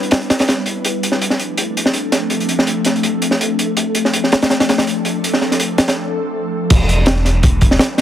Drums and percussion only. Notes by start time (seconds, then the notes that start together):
0.03 closed hi-hat
0.11 snare, closed hi-hat
0.21 closed hi-hat
0.30 snare, closed hi-hat
0.39 snare, closed hi-hat
0.48 snare, closed hi-hat
0.66 closed hi-hat
0.85 closed hi-hat
1.03 closed hi-hat
1.12 snare
1.22 closed hi-hat
1.30 snare
1.39 closed hi-hat
1.57 closed hi-hat
1.77 closed hi-hat
1.86 snare
1.93 closed hi-hat
2.12 snare, closed hi-hat
2.30 closed hi-hat
2.40 closed hi-hat
2.49 closed hi-hat
2.59 snare
2.67 closed hi-hat
2.85 snare, closed hi-hat
2.96 closed hi-hat
3.03 closed hi-hat
3.22 closed hi-hat
3.31 snare
3.41 closed hi-hat
3.59 closed hi-hat
3.77 closed hi-hat
3.95 closed hi-hat
4.05 snare
4.13 closed hi-hat
4.24 snare
4.32 snare, closed hi-hat
4.42 snare, closed hi-hat
4.50 snare, closed hi-hat
4.60 snare, closed hi-hat
4.69 snare, closed hi-hat
4.78 snare, closed hi-hat
4.87 closed hi-hat
5.05 closed hi-hat
5.24 closed hi-hat
5.33 snare
5.41 snare
5.51 snare, closed hi-hat
5.60 closed hi-hat
5.78 snare, closed hi-hat
5.88 snare, closed hi-hat
6.70 kick, closed hi-hat, crash
6.89 closed hi-hat
7.06 snare, closed hi-hat
7.16 snare
7.25 snare, closed hi-hat
7.43 kick, closed hi-hat
7.61 kick, closed hi-hat
7.71 snare
7.79 snare, closed hi-hat
7.98 snare, closed hi-hat